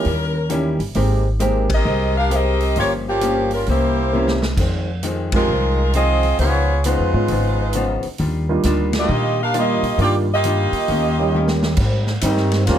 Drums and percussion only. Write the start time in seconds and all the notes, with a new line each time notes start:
0.05 open hi-hat
0.50 closed hi-hat
0.80 open hi-hat
0.95 open hi-hat
1.40 closed hi-hat
1.70 kick, ride
2.31 closed hi-hat
2.60 open hi-hat
2.76 open hi-hat
3.21 closed hi-hat
3.51 open hi-hat
3.66 open hi-hat
4.28 snare
4.42 snare
4.57 kick, crash
5.03 closed hi-hat
5.32 kick, ride
5.93 closed hi-hat
6.23 open hi-hat
6.39 open hi-hat
6.84 closed hi-hat
7.28 open hi-hat
7.73 closed hi-hat
8.03 open hi-hat
8.18 open hi-hat
8.63 snare, closed hi-hat
8.93 snare, ride
9.54 closed hi-hat
9.83 open hi-hat
9.99 open hi-hat
10.44 closed hi-hat
10.73 open hi-hat
10.88 open hi-hat
11.48 snare
11.63 snare
11.77 kick, crash
12.07 snare
12.21 hi-hat pedal, ride
12.37 snare
12.51 snare, ride
12.67 snare, ride